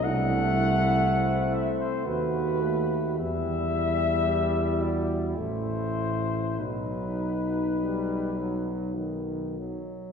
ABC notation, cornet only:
X:1
M:3/4
L:1/16
Q:1/4=53
K:Bphr
V:1 name="Cornet"
f6 e c B4 | e6 d z c4 | B8- B2 z2 |]